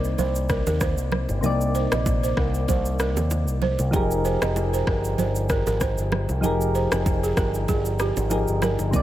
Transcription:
Already playing: picked electric bass C2, synth keys C3 A#3 D#4 D5
0.04 shaker
0.18 picked electric bass C2, balafon C5, low conga, shaker
0.35 shaker
0.49 balafon A#4, kick, cross-stick, shaker
0.67 picked electric bass D#2, balafon A#4, low bongo, shaker
0.81 balafon C5, kick, cross-stick, high bongo, shaker
0.98 picked electric bass C2, shaker
1.12 cross-stick, low conga
1.29 picked electric bass G1, high bongo, shaker
1.41 picked electric bass C2, synth keys C3 A#3 D#4, low conga, shaker
1.46 synth keys D5
1.61 shaker
1.75 balafon C5, shaker
1.92 picked electric bass A#1, balafon D#5, cross-stick, low bongo, shaker
2.06 kick, high bongo, shaker
2.23 balafon C5, shaker
2.37 picked electric bass C2, balafon A#4, kick, cross-stick
2.54 shaker
2.68 picked electric bass C2, balafon C5, kick, low conga, shaker
2.85 shaker
2.99 balafon A#4, cross-stick, shaker
3.17 picked electric bass D#2, low bongo, shaker
3.31 high bongo, shaker
3.48 picked electric bass C2, shaker
3.62 balafon C5, low conga
3.79 picked electric bass C2, high bongo, shaker
3.91 picked electric bass F1, synth keys F3 D#4 G4 G#4, kick, low conga, shaker
3.96 synth keys A#4
4.11 shaker
4.25 balafon C5, shaker
4.42 picked electric bass F1, balafon D#5, cross-stick, low bongo, shaker
4.56 high bongo, shaker
4.73 balafon C5, shaker
4.87 picked electric bass G1, balafon A#4, kick, cross-stick
5.04 shaker
5.18 picked electric bass G1, balafon C5, low conga, shaker
5.35 shaker
5.49 balafon A#4, kick, cross-stick, shaker
5.67 picked electric bass G#1, balafon A#4, low bongo, shaker
5.81 balafon C5, kick, cross-stick, high bongo, shaker
5.98 picked electric bass G1, shaker
6.12 cross-stick, low conga
6.29 picked electric bass C2, high bongo, shaker
6.41 picked electric bass F1, synth keys F3 D#4 G4 G#4, low conga, shaker
6.46 synth keys A#4
6.61 shaker
6.75 balafon C5, shaker
6.92 picked electric bass F1, balafon A#4, cross-stick, low bongo, shaker
7.06 kick, high bongo, shaker
7.23 balafon G#4, shaker
7.37 picked electric bass G1, balafon A#4, kick, cross-stick, shaker
7.54 shaker
7.68 picked electric bass G1, balafon G#4, kick, low conga, shaker
7.85 shaker
7.99 balafon G4, cross-stick, shaker
8.17 picked electric bass G#1, low bongo, shaker
8.30 synth keys F3 D#4 G4 G#4 A#4, high bongo, shaker
8.48 picked electric bass G1, shaker
8.62 balafon A#4, cross-stick, high bongo, low conga, shaker
8.79 picked electric bass G1, high bongo, shaker
8.91 picked electric bass C2, synth keys C3 A#3 D#4, kick, low conga, shaker
8.96 synth keys D5

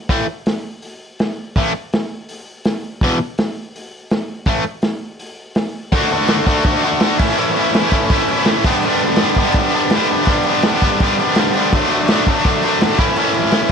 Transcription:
0.09 overdriven electric guitar A2 E3 A3, kick, open hi-hat
0.46 snare, open hi-hat
0.82 open hi-hat
1.19 snare, open hi-hat
1.56 overdriven electric guitar A2 E3 A3, kick, open hi-hat
1.93 snare, open hi-hat
2.29 open hi-hat
2.65 snare, open hi-hat
3.01 overdriven electric guitar E2 B2 E3, kick, open hi-hat
3.38 snare, open hi-hat
3.76 open hi-hat
4.10 snare, open hi-hat
4.46 overdriven electric guitar A2 E3 A3, kick, open hi-hat
4.82 snare, open hi-hat
5.19 open hi-hat
5.55 snare, open hi-hat
5.92 overdriven electric guitar D3 A3 D4 F#4, kick, crash
6.11 overdriven electric guitar A3 D4 F#4, crash
6.21 snare
6.28 overdriven electric guitar D3 A3 D4 F#4, snare, crash
6.46 overdriven electric guitar D3 A3 D4 F#4, kick, crash
6.63 overdriven electric guitar D3 A3 D4, kick, crash
6.67 overdriven electric guitar F#4
6.83 overdriven electric guitar D4 F#4, crash
6.87 overdriven electric guitar A3
7.00 overdriven electric guitar D3 A3 D4 F#4, snare, crash
7.19 overdriven electric guitar A2 E3 A3 C#4 E4, kick, crash
7.36 overdriven electric guitar A2 E3 A3 C#4 E4, crash
7.56 overdriven electric guitar A3 C#4 E4, crash
7.74 overdriven electric guitar E3 A3 C#4 E4, snare, crash
7.91 overdriven electric guitar A3 C#4 E4, kick, crash
7.95 overdriven electric guitar A2 E3
8.10 overdriven electric guitar E3 A3 C#4, kick, crash
8.14 overdriven electric guitar E4
8.28 overdriven electric guitar A3 C#4 E4, crash
8.45 overdriven electric guitar A2 E3 A3 C#4, snare, crash
8.50 overdriven electric guitar E4
8.64 overdriven electric guitar D3 G3 B3 D4, kick, crash
8.69 overdriven electric guitar G2
8.83 overdriven electric guitar G2 D3 G3 B3, crash
8.87 overdriven electric guitar D4
9.00 overdriven electric guitar D4, crash
9.05 overdriven electric guitar G3 B3
9.10 snare
9.16 snare, crash
9.21 overdriven electric guitar D3 G3 B3 D4
9.35 overdriven electric guitar D4, kick, crash
9.39 overdriven electric guitar G2 D3 G3 B3
9.52 kick, crash
9.57 overdriven electric guitar D3 G3 B3 D4
9.72 overdriven electric guitar D4, crash
9.76 overdriven electric guitar G3 B3
9.90 overdriven electric guitar G2 D3, snare, crash
9.95 overdriven electric guitar G3 B3 D4
10.07 crash
10.12 overdriven electric guitar G3 B3 D4
10.25 kick, crash
10.30 overdriven electric guitar G2 D3 G3 B3 D4
10.43 overdriven electric guitar D4, crash
10.48 overdriven electric guitar G3 B3
10.62 overdriven electric guitar D3, snare, crash
10.67 overdriven electric guitar G3 B3 D4
10.81 overdriven electric guitar B3 D4, kick, crash
10.85 overdriven electric guitar G2 D3 G3
11.00 overdriven electric guitar D3 G3 B3 D4, kick, crash
11.19 overdriven electric guitar G3 B3 D4, crash
11.35 overdriven electric guitar G2 D3 G3, snare, crash
11.40 overdriven electric guitar B3 D4
11.54 overdriven electric guitar B3 D4, crash
11.59 overdriven electric guitar G3
11.73 overdriven electric guitar D3 F#3 A3 D4, kick, crash
11.91 overdriven electric guitar F#3 A3 D4, crash
12.08 overdriven electric guitar D3 F#3 A3, snare, crash
12.12 overdriven electric guitar D4
12.26 overdriven electric guitar D3 F#3 A3 D4, kick, crash
12.45 overdriven electric guitar D3 F#3 A3 D4, kick, crash
12.63 overdriven electric guitar F#3 A3 D4, crash
12.81 overdriven electric guitar D3 F#3 A3 D4, snare, crash
12.99 overdriven electric guitar E3 A3 C#4 E4, kick, crash
13.03 overdriven electric guitar A2
13.16 overdriven electric guitar A2 E3 A3 C#4 E4, crash
13.34 overdriven electric guitar A3 C#4 E4, crash
13.45 snare
13.51 overdriven electric guitar E3 A3 C#4 E4, snare, crash
13.69 crash

